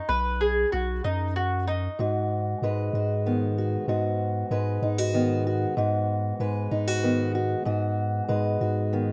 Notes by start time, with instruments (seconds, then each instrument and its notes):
0.09 sub bass B1, mandolin B4
0.41 mandolin G#4
0.72 sub bass B1, mandolin F#4
1.04 sub bass F#2, mandolin D#4
1.36 mandolin F#4
1.67 mandolin D#4
1.99 steel-string acoustic guitar G#2 F#4, sub bass G#2
2.62 sub bass G#2, steel-string acoustic guitar G#3 B4
2.93 sub bass G#2, steel-string acoustic guitar F#4
3.26 steel-string acoustic guitar D#3 B3
3.58 steel-string acoustic guitar F#4
3.88 sub bass G#2, steel-string acoustic guitar G#2 F#4
4.51 sub bass G#2, steel-string acoustic guitar G#3 B4
4.82 sub bass G#2, steel-string acoustic guitar D#4
4.98 steel-string acoustic guitar F#4
5.13 steel-string acoustic guitar D#3 B3
5.47 steel-string acoustic guitar F#4
5.77 steel-string acoustic guitar G#2 F#4, sub bass G#2
6.40 sub bass G#2, steel-string acoustic guitar G#3 B4
6.71 sub bass G#2, steel-string acoustic guitar D#4
6.87 steel-string acoustic guitar F#4
7.03 steel-string acoustic guitar D#3 B3
7.35 steel-string acoustic guitar F#4
7.65 steel-string acoustic guitar G#2 F#4, sub bass G#2
8.28 sub bass G#2, steel-string acoustic guitar G#3 B4
8.61 sub bass G#2, steel-string acoustic guitar F#4
8.93 steel-string acoustic guitar D#3 B3